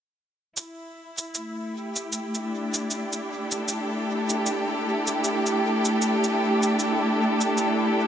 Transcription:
0.57 8.07 E4 medium
0.57 shaker soft
1.18 shaker soft
1.34 8.07 A3 medium
1.34 shaker soft
1.76 8.07 G4 medium
1.96 shaker soft
2.12 shaker soft
2.35 8.07 D4 medium
2.35 shaker soft
2.74 shaker soft
2.91 shaker soft
3.13 shaker soft
3.50 8.07 A4 medium
3.50 shaker soft
3.68 shaker soft
4.30 shaker soft
4.46 shaker soft
5.07 shaker soft
5.24 shaker soft
5.46 shaker soft
5.85 shaker soft
6.02 shaker soft
6.24 shaker soft
6.63 shaker soft
6.79 shaker soft
7.41 shaker soft
7.58 shaker soft

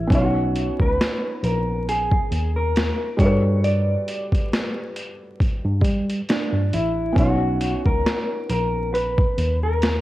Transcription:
0.00 0.14 E4 medium
0.07 0.68 B1 loud
0.07 3.14 B3 medium
0.07 3.15 C#4 medium
0.07 kick loud
0.12 3.16 D#4 medium
0.12 0.81 F#4 medium
0.12 3.17 C#5 medium
0.12 closed hi-hat medium
0.55 closed hi-hat medium
0.79 0.96 C#2 medium
0.79 1.44 B4 medium
0.79 kick medium
1.01 snare loud
1.01 closed hi-hat medium
1.43 2.18 A#1 medium
1.43 1.89 A#4 medium
1.43 closed hi-hat medium
1.89 2.56 G#4 loud
1.89 closed hi-hat medium
2.12 kick medium
2.31 2.89 D#2 medium
2.31 closed hi-hat medium
2.56 3.20 A#4 loud
2.76 snare loud
2.76 closed hi-hat medium
3.17 3.94 G2 loud
3.17 6.67 G3 medium
3.17 6.68 F#4 medium
3.17 3.64 C#5 loud
3.17 kick loud
3.17 closed hi-hat medium
3.22 6.70 A4 medium
3.22 6.71 B4 medium
3.64 5.36 D5 loud
3.64 closed hi-hat medium
4.08 closed hi-hat medium
4.32 kick medium
4.32 closed hi-hat soft
4.53 snare medium
4.53 closed hi-hat medium
4.96 closed hi-hat medium
5.40 kick medium
5.40 closed hi-hat medium
5.65 5.81 G2 medium
5.81 6.20 G3 medium
5.81 kick medium
5.81 closed hi-hat medium
6.10 closed hi-hat medium
6.29 6.74 D4 medium
6.29 snare loud
6.29 closed hi-hat medium
6.53 6.69 G2 medium
6.73 7.10 A1 medium
6.73 7.18 E4 medium
6.73 closed hi-hat medium
7.13 7.74 B1 loud
7.13 10.01 B3 medium
7.13 10.01 C#4 medium
7.13 kick loud
7.18 10.01 D#4 medium
7.18 7.86 F#4 medium
7.18 10.01 C#5 medium
7.18 closed hi-hat medium
7.61 closed hi-hat medium
7.85 8.02 C#2 medium
7.85 8.49 A#4 medium
7.85 kick medium
8.06 snare medium
8.06 closed hi-hat medium
8.50 9.24 A#1 medium
8.50 8.91 A#4 medium
8.50 closed hi-hat medium
8.94 9.63 B4 loud
8.94 closed hi-hat medium
9.18 kick medium
9.38 9.95 D#2 medium
9.38 closed hi-hat medium
9.63 10.01 A#4 loud
9.82 snare loud
9.82 closed hi-hat medium

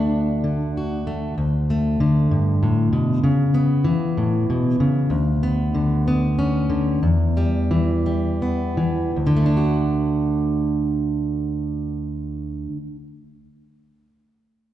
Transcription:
0.00 1.36 D2 medium
0.00 0.43 D3 medium
0.00 1.06 A3 soft
0.00 1.37 D4 medium
0.44 1.99 D3 medium
0.77 1.34 F#4 soft
1.07 1.34 A3 soft
1.38 2.30 D2 medium
1.70 3.21 A3 medium
2.00 3.24 D3 medium
2.31 2.62 G2 medium
2.63 2.92 A2 medium
2.93 3.23 B2 medium
3.24 3.86 C#3 medium
3.54 5.43 B3 medium
3.84 5.06 E3 medium
4.18 4.48 A2 medium
4.50 4.80 B2 medium
4.80 5.11 C#3 medium
5.10 7.02 D2 medium
5.43 6.07 B3 soft
5.75 6.68 D3 medium
6.08 7.00 B3 soft
6.39 6.99 C#4 soft
6.70 7.02 D3 medium
7.03 9.11 E2 medium
7.37 8.05 G3 soft
7.71 8.76 E3 medium
8.06 9.16 G3 soft
8.42 9.16 B3 soft
8.77 9.11 E3 medium
9.16 12.66 D2 medium
9.27 12.77 D3 medium
9.37 12.87 A3 soft
9.46 12.96 D4 medium
9.57 13.07 F#4 soft

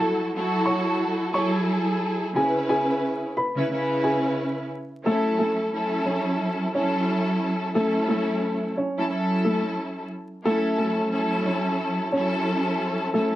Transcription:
0.00 0.28 F#3 medium
0.00 0.29 E4 medium
0.00 0.29 F#4 medium
0.00 0.29 A4 loud
0.00 0.63 A4 medium
0.00 0.63 A5 medium
0.35 1.29 F#3 medium
0.35 1.29 E4 medium
0.35 1.29 F#4 medium
0.35 1.29 A4 loud
0.66 0.97 C#5 medium
0.66 0.97 C#6 medium
1.32 2.28 F#3 loud
1.32 2.28 E4 medium
1.32 2.29 G#4 medium
1.32 2.29 A4 loud
1.32 1.53 C#5 medium
1.32 1.52 C#6 medium
2.34 3.30 C#3 medium
2.34 3.30 C#4 medium
2.34 3.30 E4 medium
2.34 2.67 G#4 medium
2.34 3.31 B4 loud
2.34 2.66 G#5 medium
2.69 3.33 G#4 medium
2.69 3.33 G#5 medium
3.37 3.68 B4 medium
3.37 3.67 B5 medium
3.56 3.68 C#3 loud
3.56 3.69 C#4 medium
3.56 3.69 E4 medium
3.56 3.70 B4 loud
3.70 4.65 C#3 loud
3.70 4.65 C#4 medium
3.70 4.65 E4 loud
3.70 4.65 B4 loud
4.04 4.22 G#4 medium
4.04 4.22 G#5 medium
5.05 5.68 F#3 medium
5.05 5.36 A3 medium
5.05 5.69 C#4 medium
5.05 5.69 E4 medium
5.05 5.36 A4 loud
5.05 5.69 A4 loud
5.39 6.03 A3 medium
5.39 6.02 A4 medium
5.72 6.67 F#3 medium
5.72 6.67 C#4 medium
5.72 6.68 E4 medium
5.72 6.68 A4 loud
6.06 6.37 C#4 medium
6.06 6.36 C#5 medium
6.74 7.68 F#3 loud
6.74 7.69 C#4 medium
6.74 6.93 C#4 medium
6.74 7.69 E4 medium
6.74 7.69 A4 loud
6.74 6.92 C#5 medium
7.74 8.69 F#3 medium
7.74 8.06 A3 medium
7.74 8.69 C#4 medium
7.74 8.70 E4 medium
7.74 8.05 A4 medium
7.74 8.70 A4 loud
8.08 8.72 A3 medium
8.08 8.72 A4 medium
8.77 9.08 C#4 medium
8.77 9.07 C#5 medium
8.97 9.07 F#3 loud
8.97 9.08 C#4 medium
8.97 9.08 E4 medium
8.97 9.09 A4 loud
9.08 10.04 F#3 medium
9.08 10.04 C#4 medium
9.08 10.04 E4 medium
9.08 10.04 A4 loud
9.45 9.63 A3 medium
9.45 9.62 A4 medium
10.45 11.08 F#3 medium
10.45 10.76 A3 medium
10.45 11.08 C#4 medium
10.45 11.08 E4 medium
10.45 10.75 A4 loud
10.45 11.09 A4 loud
10.78 11.42 A3 medium
10.78 11.42 A4 medium
11.12 12.06 F#3 medium
11.12 12.07 C#4 medium
11.12 12.07 E4 medium
11.12 12.07 A4 loud
11.46 11.77 C#4 medium
11.46 11.76 C#5 medium
12.12 13.08 F#3 loud
12.12 12.31 C#4 medium
12.12 13.08 C#4 medium
12.12 13.08 E4 medium
12.12 13.09 A4 loud
12.12 12.31 C#5 medium
13.14 13.36 F#3 medium
13.14 13.36 A3 medium
13.14 13.36 C#4 medium
13.14 13.36 E4 medium
13.14 13.36 A4 medium
13.14 13.36 A4 loud

